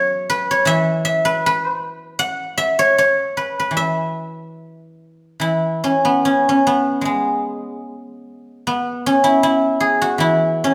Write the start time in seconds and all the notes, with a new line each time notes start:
Already playing: F#3 B4 C#5 E5 F#5
0.30 B4
0.51 C#5
0.65 E3 E5
1.05 E5
1.25 B4
1.46 B4
2.19 F#5
2.58 E5
2.79 C#5
2.98 C#5
3.37 B4
3.60 B4
3.71 E3
3.77 E5
5.40 E3 E4
5.84 C#4
6.05 B3
6.25 C#4
6.49 C#4
6.67 B3
7.01 G#3
7.05 G#3
8.67 B3
9.06 C#4
9.24 E4
9.43 E4
9.80 G#4
10.02 F#4
10.18 E3 E4
10.64 C#4